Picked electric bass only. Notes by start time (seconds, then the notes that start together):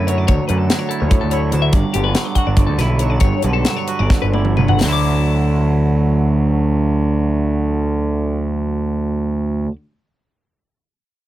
Already playing: F#2
0.29 D2
0.50 F#2
1.02 D2
1.23 D2
1.53 D2
1.73 G1
1.95 G1
2.47 G1
2.68 D2
2.78 B1
3.21 G1
3.44 B1
4.00 G1
4.23 G1
4.58 G1
4.82 D2